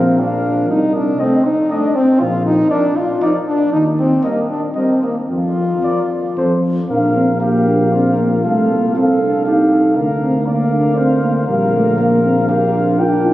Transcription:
Already playing: A#1 F3 C4 A#4 F5
0.19 F3 D4 A#4 F5
0.69 C2 D#4
0.95 D4
1.19 A3 C4 A4 D#5
1.45 D#4
1.70 A3 D4 A4 D#5
1.95 C4
2.20 A#1 F4
2.46 D#4
2.70 F3 D4 A#4 D5
2.97 F4
3.21 F3 D#4 A#4 D5
3.47 D4
3.72 D#2 D#4
3.99 C4
4.24 G3 A#3 A#4 D#5
4.50 D4
4.75 G3 C4 A#4 D#5
5.03 A#3
5.29 F2 F4
5.83 F3 A#4 D5
6.37 F2 F3 A4 C5
6.89 A#1 D4 A#4 F5
7.16 C4
7.41 A#3 G4 A#4 F5
7.67 D4
7.92 C4 F4
8.18 A#3
8.44 C2 A3 A4 F5
8.70 A#3
8.94 C4 A4 F5
9.21 D4
9.45 D#4 G4 A4 F5
9.71 A4
9.96 D2 D4 A#4 F5
10.23 C4
10.46 A#3 A#4 D5 F5
10.72 D4
10.96 C4 C5
11.22 A#3
11.46 A#1 G3 A#4 F5
11.73 A3
11.98 A#3 A#4 F5
12.24 C4
12.49 D4 G4 A#4 F5
12.74 F4
12.99 D4 F4 A#4 G5
13.26 D#4

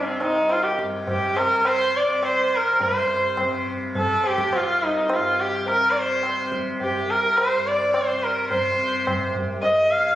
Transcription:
Already playing: C2 G2 C3
0.06 C4
0.21 C2 D#4, tabla na
0.49 F4, tabla na
0.63 G4
0.79 G2, tabla ke
1.07 G4, tabla tin, tabla ge
1.37 C3 A#4, tabla na
1.65 C5, tabla na
1.96 C3 D5
2.23 C5, tabla na
2.55 A#4
2.59 C2
2.80 G2 C5, tabla tin, tabla ge
3.37 C3, tabla na, tabla ge
3.66 tabla ge
3.95 A4, tabla tin, tabla ge
3.99 C3
4.24 G4, tabla na
4.38 tabla ke
4.53 F4, tabla na
4.59 C2
4.84 D#4
5.09 tabla na
5.14 G2 F4
5.41 G4
5.66 A#4, tabla tin
5.76 C3
5.91 D5
5.98 C5
6.23 tabla na
6.36 C3
6.52 tabla ke
6.80 G4, tabla tin, tabla ge
6.94 C2
7.10 A#4
7.38 C5, tabla na
7.54 G2
7.67 D5
7.94 C5, tabla na
8.12 C3
8.23 A#4
8.50 C5, tabla tin, tabla ge
8.69 C3
9.07 tabla na, tabla ge
9.28 C2
9.35 tabla ge
9.62 D#5, tabla tin, tabla ge
9.85 G2
9.91 F5

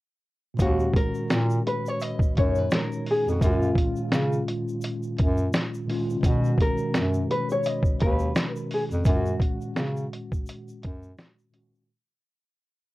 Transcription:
0.54 A#2 D#3
0.59 D#2 G#3 C#4 F#4, kick, closed hi-hat, shaker
0.66 F#4
0.80 shaker
0.94 A#4, kick, closed hi-hat
1.15 shaker
1.30 A#2, snare, closed hi-hat, shaker
1.50 shaker
1.67 B4, closed hi-hat
1.86 C#5, shaker
2.00 D#5, closed hi-hat, shaker
2.19 kick, shaker
2.35 F#2 A#2 D#3 G#3 C#5, kick, closed hi-hat
2.39 C#4 D#4
2.55 B4, shaker
2.71 snare, closed hi-hat, shaker
2.75 A#4
2.92 shaker
3.06 open hi-hat
3.11 G#4
3.27 F2, shaker
3.31 F#4
3.37 A2 D#3, kick
3.41 F#2 A#2 G#3 C#4, closed hi-hat, shaker
3.46 F4
3.62 shaker
3.75 kick, closed hi-hat
3.96 shaker
4.12 C#3, snare, closed hi-hat, shaker
4.33 shaker
4.48 closed hi-hat
4.68 shaker
4.81 closed hi-hat, shaker
5.03 shaker
5.18 F#2, kick, closed hi-hat
5.37 shaker
5.53 snare, closed hi-hat, shaker
5.74 shaker
5.85 A#2 D#3 G#3
5.90 C#4 F4, open hi-hat
6.10 shaker
6.17 B2 C#3
6.22 B2 D#3 G#3 C#4 F#4, kick, closed hi-hat, shaker
6.28 F#4
6.44 shaker
6.58 A#4, kick, closed hi-hat
6.78 shaker
6.94 F#2, snare, closed hi-hat, shaker
7.14 shaker
7.31 B4, closed hi-hat
7.50 C#5, shaker
7.63 D#5, closed hi-hat, shaker
7.83 kick, shaker
8.00 D#2 B4, kick, closed hi-hat
8.19 shaker
8.35 snare, closed hi-hat, shaker
8.51 A#4
8.56 shaker
8.71 G#4, open hi-hat
8.92 F2, shaker
9.02 F#2 A#2 D#3, kick, shaker
9.07 G#3 C#4 F#4, closed hi-hat
9.13 F4
9.20 F#4
9.26 shaker
9.40 kick, closed hi-hat
9.62 shaker
9.76 C#3, snare, closed hi-hat, shaker
9.97 shaker
10.13 closed hi-hat
10.32 kick, shaker
10.46 closed hi-hat, shaker
10.68 shaker
10.83 F#2, kick, closed hi-hat
11.03 shaker
11.18 snare, closed hi-hat, shaker
11.39 shaker
11.50 A#2 D#3 G#3, closed hi-hat
11.54 C#4 F#4
11.75 shaker

